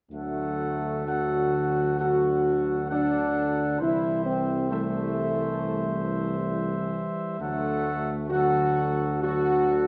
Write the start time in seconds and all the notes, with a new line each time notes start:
0.11 D2 D3 F#3 A3 A4 F#5
1.06 D3 F#3 F#4 A4 F#5
1.99 D3 F#3 F#4 A4 F#5
2.89 D3 F#3 D4 A4 F#5
3.79 C2 E3 G3 E4 C5 E5
4.25 C4
4.70 E3 G3 A3 C5 E5
7.39 D2 D3 F#3 A3 A4 F#5
8.30 D3 F#3 F#4 A4 F#5
9.22 D3 F#3 F#4 A4 F#5